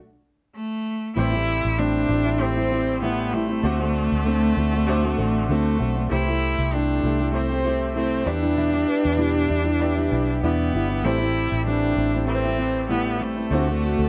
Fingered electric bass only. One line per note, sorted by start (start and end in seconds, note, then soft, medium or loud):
1.17 1.61 A1 medium
1.65 2.06 A1 medium
2.09 3.59 A1 loud
3.63 4.07 D2 loud
4.12 4.53 D2 medium
4.57 5.14 D2 medium
5.18 5.47 A1 medium
5.49 5.77 D2 medium
5.80 6.08 B1 loud
6.11 6.55 C2 loud
6.58 7.00 C2 loud
7.04 8.23 C2 loud
8.26 8.84 E2 medium
9.05 9.46 E2 medium
9.50 10.08 E2 loud
10.12 10.40 B1 medium
10.43 10.71 E2 medium
10.73 11.02 G1 medium
11.04 11.48 A1 medium
11.52 11.93 A1 medium
11.97 13.47 A1 loud
13.51 13.95 D2 loud
13.99 14.09 D2 medium